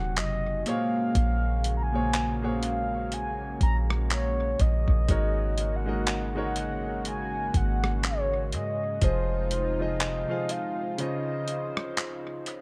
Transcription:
0.00 0.19 D#1 loud
0.00 0.62 C3 medium
0.00 0.23 D#3 medium
0.00 0.62 F#3 medium
0.00 0.23 A#3 medium
0.00 0.62 D#4 medium
0.00 0.67 F#4 medium
0.00 5.04 F#4 medium
0.00 0.68 C5 medium
0.00 0.24 D#5 medium
0.00 0.18 F#5 loud
0.00 0.68 F#5 medium
0.17 0.64 F#1 loud
0.17 0.64 D#5 loud
0.17 clap loud
0.17 closed hi-hat medium
0.65 1.79 A#2 medium
0.65 5.04 C#3 medium
0.65 10.95 G#3 medium
0.65 8.98 A#3 medium
0.65 1.79 A#3 medium
0.65 1.79 G#4 medium
0.65 1.80 C5 medium
0.65 1.80 C#5 medium
0.65 1.72 F5 loud
0.65 closed hi-hat medium
1.15 3.57 A#1 loud
1.15 kick loud
1.15 closed hi-hat medium
1.64 closed hi-hat medium
1.77 1.84 A#5 medium
1.83 2.46 G#5 medium
1.92 2.36 A#2 medium
1.92 2.37 A#3 medium
1.92 2.37 G#4 medium
1.92 2.37 C5 medium
1.92 2.38 C#5 medium
2.13 clap loud
2.13 closed hi-hat medium
2.41 4.16 A#2 medium
2.41 4.16 A#3 medium
2.41 4.17 G#4 medium
2.41 4.17 C5 medium
2.41 4.18 C#5 medium
2.41 2.50 F#5 medium
2.48 3.15 F5 loud
2.63 closed hi-hat medium
3.12 3.62 G#5 loud
3.12 closed hi-hat medium
3.61 4.55 A#1 loud
3.61 3.77 A#5 loud
3.61 kick loud
3.61 closed hi-hat medium
3.90 cross-stick medium
4.10 4.62 C#5 loud
4.10 clap loud
4.10 closed hi-hat medium
4.59 4.87 A#1 loud
4.59 5.78 D#5 loud
4.59 kick medium
4.59 closed hi-hat medium
4.88 5.08 A#1 loud
4.88 kick loud
5.08 7.50 G#1 loud
5.08 8.98 C#3 medium
5.08 5.78 G#3 medium
5.08 5.78 D#4 medium
5.08 8.98 F#4 medium
5.08 5.78 F#4 medium
5.08 5.79 A#4 medium
5.08 5.79 C#5 medium
5.08 kick loud
5.08 closed hi-hat medium
5.58 closed hi-hat medium
5.76 6.41 F#5 medium
5.86 6.29 G#3 medium
5.86 6.30 D#4 medium
5.86 6.30 F#4 medium
5.86 6.31 A#4 medium
5.86 6.31 D#5 medium
6.07 clap loud
6.07 closed hi-hat medium
6.35 8.10 G#3 medium
6.35 8.10 D#4 medium
6.35 8.10 F#4 medium
6.35 8.11 A#4 medium
6.35 8.11 C#5 medium
6.42 7.02 F#5 loud
6.56 closed hi-hat medium
7.05 7.58 G#5 loud
7.05 closed hi-hat medium
7.54 8.54 G#1 loud
7.54 8.05 F#5 loud
7.54 kick loud
7.54 closed hi-hat medium
7.84 cross-stick medium
8.03 8.51 C#5 loud
8.03 clap loud
8.03 closed hi-hat medium
8.52 9.00 G#2 loud
8.52 9.05 D#5 medium
8.52 closed hi-hat medium
9.01 10.25 F1 loud
9.01 10.97 C3 medium
9.01 9.71 F3 medium
9.01 12.61 D#4 medium
9.01 9.71 F4 medium
9.01 12.61 F4 medium
9.01 9.72 G#4 medium
9.01 9.72 C5 medium
9.01 9.83 C5 loud
9.01 9.72 D#5 medium
9.01 kick loud
9.01 closed hi-hat medium
9.51 closed hi-hat medium
9.79 10.23 F3 medium
9.79 10.23 F4 medium
9.79 10.24 G#4 medium
9.79 10.24 C5 medium
9.79 10.53 D#5 medium
9.79 10.24 D#5 medium
10.00 clap loud
10.00 closed hi-hat medium
10.28 10.98 F3 medium
10.28 10.98 F4 medium
10.28 10.99 G#4 medium
10.28 10.98 C5 medium
10.28 11.00 F5 medium
10.49 11.00 F5 medium
10.49 closed hi-hat medium
10.98 12.61 C#3 medium
10.98 12.61 C#4 medium
10.98 12.61 F4 medium
10.98 12.61 C5 medium
10.98 12.43 D#5 medium
10.98 12.61 D#5 medium
10.98 closed hi-hat medium
11.48 closed hi-hat medium
11.77 cross-stick medium
11.97 clap loud
11.97 closed hi-hat medium
12.46 closed hi-hat medium

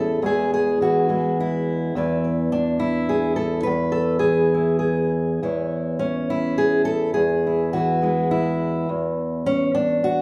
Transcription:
0.00 0.22 E2 medium
0.00 0.22 G#3 soft
0.00 0.21 E4 medium
0.00 0.22 A4 medium
0.22 1.95 E2 medium
0.22 0.81 E3 soft
0.22 1.08 G#3 soft
0.22 1.09 E4 soft
0.22 0.52 G#4 medium
0.54 0.81 G#4 medium
0.81 1.96 E3 medium
0.81 1.95 F#4 medium
1.09 1.94 G#3 soft
1.09 1.40 E4 soft
1.40 1.96 E4 medium
1.95 3.66 E2 medium
1.95 2.52 E3 soft
1.95 2.80 E4 soft
1.95 2.23 D5 soft
2.24 2.79 D5 soft
2.52 3.38 D4 medium
2.80 3.63 E4 medium
3.09 3.36 G#4 medium
3.36 3.66 A4 medium
3.63 5.42 E2 medium
3.63 4.51 B4 medium
3.92 4.19 A4 medium
4.19 5.43 E3 medium
4.19 4.78 G#4 medium
4.54 5.43 E4 soft
4.79 5.40 G#4 medium
5.42 7.15 E2 medium
5.42 5.99 E3 soft
5.42 6.30 E4 soft
5.42 6.30 C#5 soft
5.99 6.86 C#4 medium
6.30 7.16 E4 medium
6.58 6.85 G#4 medium
6.85 7.13 A4 medium
7.14 8.89 E2 medium
7.14 7.72 G#4 medium
7.47 8.03 E4 soft
7.73 9.46 E3 medium
7.73 8.87 F#4 medium
8.02 8.88 G#3 soft
8.02 8.31 E4 soft
8.31 8.88 E4 medium
8.89 10.22 E2 medium
9.46 9.74 C#4 medium
9.75 10.22 D4 medium
10.04 10.22 F#4 medium

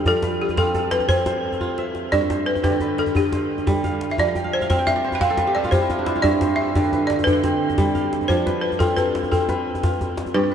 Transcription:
0.00 0.11 G2 medium
0.00 0.11 D3 medium
0.00 0.11 G3 medium
0.00 0.29 C5 medium
0.00 0.71 F5 medium
0.06 2.17 F3 medium
0.06 0.42 A4 medium
0.06 1.17 D5 medium
0.06 djembe slap soft
0.06 djembe bass medium
0.23 1.15 B4 medium
0.23 djembe slap medium
0.23 djembe tone medium
0.42 0.59 G4 medium
0.49 djembe slap soft
0.49 djembe tone medium
0.57 1.09 C4 medium
0.57 1.60 F4 medium
0.57 0.90 A4 medium
0.57 djembe slap medium
0.57 djembe bass medium
0.66 djembe slap soft
0.74 2.06 A4 medium
0.74 djembe tone medium
0.91 1.08 B4 medium
0.91 djembe slap medium
1.00 djembe slap soft
1.00 djembe tone medium
1.09 2.87 C4 medium
1.09 1.74 C5 loud
1.09 djembe bass medium
1.26 2.30 C5 medium
1.26 djembe slap medium
1.26 djembe tone medium
1.44 djembe slap soft
1.53 djembe tone soft
1.61 2.19 F4 medium
1.61 djembe bass soft
1.78 2.12 E5 medium
1.78 djembe slap soft
1.95 djembe slap soft
2.12 4.23 G2 medium
2.12 2.48 D5 loud
2.12 3.16 E5 medium
2.12 djembe bass medium
2.30 2.87 C5 medium
2.30 djembe slap medium
2.30 djembe tone medium
2.46 2.62 B4 medium
2.56 djembe tone medium
2.63 3.14 D3 medium
2.63 4.05 G4 medium
2.63 2.99 B4 medium
2.63 djembe slap medium
2.63 djembe bass medium
2.72 djembe slap soft
2.80 3.39 B4 medium
2.80 djembe slap soft
2.80 djembe tone medium
2.98 3.16 A4 medium
2.98 djembe slap medium
3.06 djembe tone medium
3.15 4.23 D3 medium
3.15 3.52 G4 medium
3.15 djembe bass medium
3.32 4.52 C5 medium
3.32 djembe slap medium
3.32 djembe tone medium
3.58 djembe tone soft
3.67 4.23 G3 medium
3.67 djembe slap medium
3.67 djembe bass medium
3.84 4.44 F5 medium
3.84 djembe tone medium
4.01 djembe slap medium
4.10 4.18 E5 medium
4.10 djembe tone soft
4.18 6.29 F3 medium
4.18 4.54 D5 loud
4.18 djembe bass medium
4.35 4.78 G5 medium
4.35 djembe tone medium
4.44 4.61 F5 medium
4.53 4.69 C5 medium
4.53 4.76 E5 medium
4.61 4.70 F5 medium
4.61 djembe tone medium
4.70 5.19 C4 medium
4.70 4.77 C5 medium
4.70 4.87 F5 medium
4.70 djembe slap medium
4.70 djembe bass medium
4.78 5.72 G5 medium
4.78 djembe slap soft
4.87 5.15 E5 loud
4.87 5.88 F5 medium
4.87 djembe slap soft
4.87 djembe tone medium
4.96 6.07 D5 medium
5.04 5.21 C5 medium
5.12 5.38 B4 medium
5.12 5.22 G5 medium
5.12 djembe tone medium
5.21 6.99 C4 medium
5.21 5.45 C5 medium
5.21 5.53 F5 loud
5.21 djembe bass medium
5.30 5.55 A4 medium
5.37 6.47 B4 medium
5.37 djembe slap medium
5.37 djembe tone medium
5.47 5.73 G4 medium
5.55 6.88 A4 medium
5.55 5.73 D5 medium
5.64 5.73 F4 medium
5.64 djembe tone medium
5.71 5.90 F4 medium
5.71 6.75 G4 medium
5.71 6.08 C5 medium
5.71 djembe slap medium
5.71 djembe bass medium
5.82 6.06 E4 medium
5.90 6.12 F4 medium
5.90 djembe tone medium
5.99 7.67 D4 medium
6.06 7.63 E4 medium
6.06 djembe slap medium
6.15 7.67 F4 medium
6.15 djembe tone soft
6.22 8.35 G2 medium
6.22 6.58 D5 loud
6.22 7.27 E5 medium
6.22 djembe bass medium
6.41 6.99 C5 medium
6.41 djembe slap medium
6.41 djembe tone medium
6.56 7.10 E5 medium
6.75 7.26 D3 medium
6.75 8.17 G4 medium
6.75 djembe slap medium
6.75 djembe bass medium
6.84 djembe slap soft
6.93 7.49 B4 medium
6.93 djembe slap soft
6.93 djembe tone medium
7.07 7.26 D5 medium
7.07 djembe slap medium
7.19 djembe tone medium
7.24 8.35 D3 medium
7.24 8.07 B4 loud
7.24 djembe bass medium
7.43 8.52 C4 medium
7.43 djembe slap medium
7.43 djembe tone medium
7.70 djembe tone medium
7.78 8.35 G3 medium
7.78 djembe slap medium
7.78 djembe bass medium
7.95 8.95 F5 medium
7.95 djembe tone medium
8.13 djembe slap medium
8.21 djembe tone soft
8.28 10.40 F3 medium
8.28 8.64 C5 medium
8.28 9.40 D5 medium
8.28 djembe bass medium
8.46 9.37 B4 medium
8.46 djembe slap medium
8.46 djembe tone medium
8.61 8.80 B4 medium
8.72 djembe tone medium
8.79 9.31 C4 medium
8.79 9.83 F4 medium
8.79 8.96 A4 medium
8.79 djembe slap medium
8.79 djembe bass medium
8.97 10.29 A4 medium
8.97 9.32 B4 medium
8.97 djembe slap soft
8.97 djembe tone medium
9.06 djembe slap soft
9.15 djembe slap medium
9.23 djembe tone medium
9.31 10.54 C4 medium
9.31 10.13 A4 medium
9.31 djembe bass medium
9.49 10.51 B4 medium
9.49 djembe slap medium
9.49 djembe tone medium
9.75 djembe slap soft
9.75 djembe tone medium
9.83 10.54 F4 medium
9.83 djembe slap medium
9.83 djembe bass medium
10.01 djembe slap soft
10.01 djembe tone medium
10.09 djembe slap soft
10.17 djembe slap medium
10.26 djembe tone medium
10.34 10.54 G2 medium
10.34 10.54 B4 loud
10.34 10.54 D5 medium
10.51 10.54 B4 medium

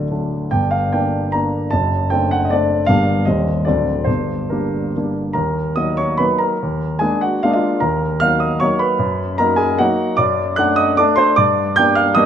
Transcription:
0.00 0.49 D1 soft
0.00 0.48 D2 soft
0.00 0.10 F#3 soft
0.00 0.11 A3 soft
0.00 0.12 D4 soft
0.00 0.31 D5 soft
0.00 0.13 D#5 medium
0.10 0.49 F#3 soft
0.10 0.49 A3 soft
0.10 0.49 D4 soft
0.51 1.69 G1 soft
0.51 1.69 G2 soft
0.51 0.72 G5 medium
0.71 0.93 F5 medium
0.93 1.30 A#3 soft
0.93 1.31 D4 soft
0.93 1.34 G5 medium
1.32 1.69 A#3 soft
1.32 1.69 D4 soft
1.32 1.72 A#5 medium
1.71 2.84 F#1 soft
1.71 2.84 F#2 soft
1.71 2.11 A5 medium
2.10 2.46 A3 soft
2.10 2.47 C4 soft
2.10 2.47 D4 soft
2.10 2.31 G5 medium
2.31 2.44 F#5 medium
2.45 2.51 D#5 medium
2.50 2.84 A3 soft
2.50 2.85 C4 soft
2.50 2.85 D4 soft
2.50 2.87 D5 medium
2.87 3.25 G1 soft
2.87 3.24 G2 medium
2.87 3.22 G3 soft
2.87 3.22 A#3 soft
2.87 3.23 D4 soft
2.87 3.25 F5 medium
3.25 3.65 D#1 soft
3.25 3.66 D#2 soft
3.25 3.63 G3 soft
3.25 3.63 C4 soft
3.25 3.66 D#5 medium
3.65 4.07 D1 soft
3.65 4.07 D2 soft
3.65 4.04 F#3 soft
3.65 4.04 C4 soft
3.65 4.04 D4 soft
3.65 4.07 D5 medium
4.04 5.32 G1 soft
4.04 5.32 G2 soft
4.04 4.49 C5 medium
4.50 4.91 G3 soft
4.50 4.91 A#3 soft
4.50 4.91 D4 soft
4.50 5.15 A#4 soft
4.96 5.33 G3 soft
4.96 5.34 A#3 soft
4.96 5.34 D4 soft
5.33 5.76 D#2 soft
5.33 5.74 A#4 medium
5.33 5.77 A#5 medium
5.76 6.15 F#3 soft
5.76 6.15 A#3 soft
5.76 6.16 D#4 soft
5.76 5.97 D#5 medium
5.76 5.98 D#6 medium
5.97 6.18 C#5 soft
5.97 6.19 C#6 medium
6.18 6.55 F#3 soft
6.18 6.56 A#3 soft
6.18 6.56 D#4 soft
6.18 6.38 B4 medium
6.18 6.39 B5 medium
6.38 6.97 A#4 soft
6.38 7.00 A#5 medium
6.62 7.01 D#2 soft
6.99 7.38 G#3 soft
6.99 7.38 A#3 soft
6.99 7.39 D4 soft
6.99 7.20 G#4 medium
6.99 7.21 G#5 medium
7.21 7.41 F#4 soft
7.21 7.42 F#5 medium
7.43 7.79 G#3 soft
7.43 7.79 A#3 soft
7.43 7.79 D4 soft
7.43 7.50 F5 medium
7.50 7.57 D#5 soft
7.50 7.81 F5 medium
7.55 7.80 F4 soft
7.80 8.21 D#2 soft
7.80 8.19 A#4 medium
7.80 8.22 A#5 medium
8.20 8.58 F#3 soft
8.20 8.58 A#3 soft
8.20 8.58 D#4 soft
8.20 8.41 F5 medium
8.20 8.41 F6 medium
8.40 8.60 D#5 soft
8.40 8.61 D#6 medium
8.60 8.97 F#3 soft
8.60 8.97 A#3 soft
8.60 8.98 D#4 soft
8.60 8.80 C#5 medium
8.60 8.81 C#6 medium
8.79 9.35 B4 medium
8.79 9.39 B5 medium
8.99 9.38 F#2 medium
9.38 9.76 F#3 soft
9.38 9.76 A#3 soft
9.38 9.76 D#4 soft
9.38 9.59 A#4 medium
9.38 9.59 A#5 medium
9.56 9.77 G#4 medium
9.56 9.78 G#5 medium
9.78 10.14 F#3 soft
9.78 10.15 A#3 soft
9.78 10.15 D#4 medium
9.78 10.15 F#4 medium
9.78 10.18 F#5 medium
10.17 10.57 F#2 medium
10.17 10.55 D5 medium
10.17 10.57 D6 medium
10.56 10.95 A3 soft
10.56 10.95 D4 medium
10.56 10.78 F#5 medium
10.56 10.78 F#6 medium
10.76 10.96 D#5 medium
10.76 10.97 D#6 medium
10.97 11.33 A3 medium
10.97 11.34 D4 medium
10.97 11.17 D5 medium
10.97 11.18 D6 medium
11.16 11.36 C5 medium
11.16 11.36 C6 medium
11.36 11.76 G2 medium
11.36 11.74 D5 medium
11.36 11.77 D6 medium
11.76 12.14 G3 soft
11.76 12.15 A#3 medium
11.76 12.15 D4 soft
11.76 11.96 G5 medium
11.76 11.97 G6 medium
11.95 12.15 F5 medium
11.95 12.17 F6 medium
12.15 12.26 G3 soft
12.15 12.26 A#3 medium
12.15 12.26 D4 medium
12.15 12.26 D#5 medium
12.15 12.26 D#6 loud

